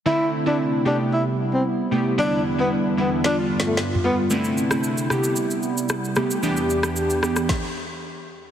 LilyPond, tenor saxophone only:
\new Staff \with { instrumentName = "Tenor saxophone" } { \time 4/4 \key a \minor \tempo 4 = 113 e'8 r16 d'16 r8 d'16 r16 e'16 r8 c'16 r4 | d'8 r16 b16 r8 b16 r16 d'16 r8 a16 r8 b16 r16 | r1 | r1 | }